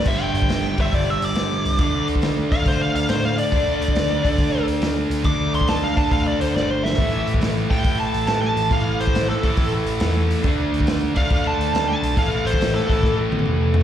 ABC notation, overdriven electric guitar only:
X:1
M:4/4
L:1/8
Q:"Swing" 1/4=139
K:Ador
V:1 name="Overdriven electric guitar" clef=bass
[G,,D,G,]3 [G,,D,G,]4- [G,,D,G,] | [D,A,D]3 [D,A,D]4- [D,A,D] | [D,A,D]3 [D,A,D]4- [D,A,D] | [D,A,D]3 [D,A,D]4- [D,A,D] |
[A,,E,A,]3 [A,,E,A,]4- [A,,E,A,] | [A,,E,A,]3 [A,,E,A,]4- [A,,E,A,] | [D,A,D]3 [D,A,D]4- [D,A,D] | [A,,E,A,]3 [A,,E,A,]4- [A,,E,A,] |]